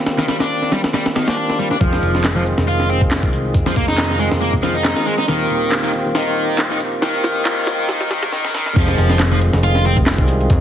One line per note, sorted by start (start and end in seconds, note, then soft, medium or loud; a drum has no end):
0.00 1.77 D#3 medium
0.00 1.77 A#3 medium
0.00 1.77 C4 medium
0.00 1.77 F4 medium
0.00 1.77 G4 medium
0.06 snare loud
0.06 closed hi-hat medium
0.06 closed hi-hat soft
0.18 0.25 D#3 loud
0.18 snare loud
0.18 closed hi-hat medium
0.28 0.37 G3 medium
0.28 snare loud
0.28 closed hi-hat medium
0.40 0.71 D4 medium
0.40 snare loud
0.40 closed hi-hat soft
0.40 closed hi-hat medium
0.50 closed hi-hat medium
0.50 closed hi-hat soft
0.62 snare soft
0.72 0.80 G3 loud
0.72 snare loud
0.72 closed hi-hat medium
0.84 snare loud
0.84 closed hi-hat soft
0.84 closed hi-hat medium
0.94 1.05 G3 loud
0.94 snare loud
0.94 closed hi-hat soft
0.94 closed hi-hat medium
1.06 snare loud
1.06 closed hi-hat medium
1.16 1.27 D#3 medium
1.16 snare loud
1.16 closed hi-hat medium
1.27 1.58 D4 medium
1.27 snare loud
1.27 closed hi-hat soft
1.27 closed hi-hat medium
1.38 closed hi-hat soft
1.38 closed hi-hat medium
1.50 snare medium
1.59 1.67 G3 loud
1.59 closed hi-hat medium
1.71 1.78 D4 medium
1.71 snare soft
1.71 closed hi-hat soft
1.81 2.00 F1 loud
1.81 5.25 D#3 medium
1.81 2.23 F3 loud
1.81 5.25 G#3 medium
1.81 8.29 C4 medium
1.81 8.29 F4 medium
1.81 5.25 G#4 medium
1.81 kick loud
1.81 closed hi-hat medium
1.93 snare soft
2.03 2.55 F1 medium
2.03 closed hi-hat medium
2.15 snare soft
2.24 snare loud
2.24 clap loud
2.24 closed hi-hat medium
2.36 2.43 F3 loud
2.36 closed hi-hat soft
2.46 closed hi-hat medium
2.58 3.25 F1 medium
2.58 snare soft
2.68 2.88 F4 loud
2.68 open hi-hat medium
2.80 snare soft
2.89 3.00 C4 medium
2.89 closed hi-hat medium
3.01 kick medium
3.11 snare loud
3.11 clap loud
3.11 closed hi-hat medium
3.23 3.52 C2 medium
3.23 kick medium
3.33 closed hi-hat medium
3.54 3.73 F1 loud
3.54 kick loud
3.54 closed hi-hat medium
3.66 3.73 F3 loud
3.66 snare soft
3.76 4.29 F1 medium
3.76 3.85 A#3 medium
3.76 kick medium
3.76 closed hi-hat medium
3.88 4.19 D#4 medium
3.88 snare soft
3.98 snare loud
3.98 clap loud
3.98 closed hi-hat medium
4.10 snare soft
4.19 4.28 G#3 loud
4.19 closed hi-hat medium
4.31 4.94 F1 medium
4.31 snare medium
4.41 4.53 A#3 loud
4.41 closed hi-hat medium
4.53 kick loud
4.62 4.74 F3 medium
4.62 snare medium
4.62 closed hi-hat medium
4.75 5.06 D#4 medium
4.75 closed hi-hat soft
4.85 snare loud
4.85 clap loud
4.85 closed hi-hat medium
4.97 snare medium
5.06 5.15 G#3 loud
5.06 closed hi-hat medium
5.18 5.25 D#4 medium
5.18 snare soft
5.28 5.47 D#1 loud
5.28 5.71 D#3 medium
5.28 8.30 D#3 medium
5.28 8.30 A#3 medium
5.28 8.30 G4 medium
5.28 snare medium
5.28 closed hi-hat medium
5.50 6.03 D#1 medium
5.50 closed hi-hat medium
5.72 snare medium
5.72 clap loud
5.72 closed hi-hat medium
5.83 5.91 D#3 loud
5.83 closed hi-hat soft
5.93 closed hi-hat medium
6.05 6.72 D#1 medium
6.15 6.58 D#3 loud
6.15 snare medium
6.15 open hi-hat medium
6.37 closed hi-hat medium
6.58 snare medium
6.58 clap loud
6.58 closed hi-hat medium
6.70 7.00 A#1 loud
6.70 6.78 D#3 medium
6.80 closed hi-hat medium
7.02 7.21 D#1 loud
7.02 7.44 D#3 loud
7.02 snare medium
7.02 closed hi-hat medium
7.24 7.76 D#1 medium
7.24 snare medium
7.24 closed hi-hat medium
7.36 closed hi-hat soft
7.45 7.88 D#3 loud
7.45 snare medium
7.45 clap loud
7.45 closed hi-hat medium
7.67 snare medium
7.67 open hi-hat medium
7.79 8.22 D#1 medium
7.89 8.10 D#3 loud
7.89 snare medium
7.89 closed hi-hat medium
8.01 snare medium
8.11 8.31 D#3 loud
8.11 snare loud
8.11 closed hi-hat medium
8.23 8.31 D#1 loud
8.23 snare medium
8.23 closed hi-hat medium
8.32 8.53 D#3 loud
8.32 snare medium
8.44 snare medium
8.55 8.75 D#3 loud
8.55 snare medium
8.66 snare medium
8.76 8.95 F1 loud
8.76 10.61 D#3 medium
8.76 9.19 F3 loud
8.76 10.61 G#3 medium
8.76 10.61 C4 medium
8.76 10.61 F4 medium
8.76 10.61 G#4 medium
8.76 kick loud
8.76 closed hi-hat medium
8.76 closed hi-hat soft
8.76 crash loud
8.88 snare soft
8.98 9.51 F1 medium
8.98 closed hi-hat medium
9.10 snare soft
9.10 closed hi-hat soft
9.20 snare loud
9.20 clap loud
9.20 closed hi-hat medium
9.20 closed hi-hat soft
9.31 9.39 F3 loud
9.31 closed hi-hat soft
9.41 closed hi-hat medium
9.53 10.20 F1 medium
9.53 snare soft
9.53 closed hi-hat soft
9.63 9.84 F4 loud
9.63 closed hi-hat soft
9.63 open hi-hat medium
9.75 snare soft
9.85 9.97 C4 medium
9.85 closed hi-hat medium
9.97 kick loud
9.97 closed hi-hat soft
10.06 snare loud
10.06 clap loud
10.06 closed hi-hat medium
10.06 closed hi-hat soft
10.18 10.48 C2 medium
10.18 kick loud
10.28 closed hi-hat medium
10.41 closed hi-hat soft
10.50 10.61 F1 loud
10.50 kick loud
10.50 closed hi-hat medium
10.50 closed hi-hat soft